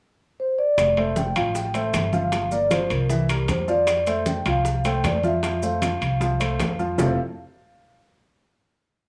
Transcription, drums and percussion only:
0.78 high bongo, high conga, high timbale, maracas
0.97 high conga, high timbale
1.16 high bongo, high conga, maracas
1.35 high conga, high timbale, maracas
1.55 high bongo, high conga, maracas
1.74 high conga, high timbale, maracas
1.93 high bongo, low bongo, high conga, high timbale, maracas
2.13 high conga, maracas
2.32 high bongo, high conga, high timbale, maracas
2.51 high bongo, high conga, maracas
2.71 high bongo, high conga, high timbale, maracas
2.90 high bongo, high conga, high timbale, maracas
3.09 high bongo, high conga, maracas
3.29 high bongo, high conga, high timbale, maracas
3.48 high bongo, low bongo, high conga, high timbale, maracas
3.68 high conga, maracas
3.87 high bongo, high conga, high timbale, maracas
4.07 high conga, high timbale, maracas
4.26 high bongo, high conga, maracas
4.46 high conga, high timbale, maracas
4.65 high bongo, high conga, maracas
4.85 high conga, high timbale, maracas
5.04 high bongo, low bongo, high conga, high timbale, low timbale, maracas
5.23 high conga, maracas
5.43 high bongo, high conga, high timbale, maracas
5.62 high bongo, high conga, maracas
5.82 high bongo, high conga, high timbale, maracas
6.01 high bongo, high conga, high timbale, maracas
6.21 high bongo, high conga, maracas
6.40 high bongo, high conga, high timbale, maracas
6.60 high bongo, low bongo, high conga, high timbale, low timbale, maracas
6.79 high conga, maracas
6.98 low bongo, low conga, low timbale, maracas

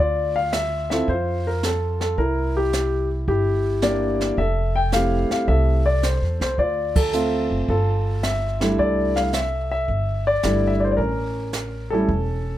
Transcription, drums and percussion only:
0.53 snare, hi-hat pedal
0.91 snare
1.08 brush sweep, kick
1.63 snare, hi-hat pedal
2.01 snare
2.18 brush sweep, kick
2.73 snare, hi-hat pedal
3.28 brush sweep, kick
3.82 snare, hi-hat pedal
4.21 snare
4.38 brush sweep, kick
4.92 snare, hi-hat pedal
5.31 snare
5.48 brush sweep, kick
6.03 snare, hi-hat pedal
6.41 snare
6.58 brush sweep, kick
6.96 kick, ride
7.13 hi-hat pedal
7.69 brush sweep, kick
8.23 snare, hi-hat pedal
8.61 snare
8.79 brush sweep, kick
9.16 snare
9.33 snare, hi-hat pedal
9.88 brush sweep, kick
10.43 snare, hi-hat pedal
10.98 brush sweep, kick
11.53 snare, hi-hat pedal
12.08 brush sweep, kick

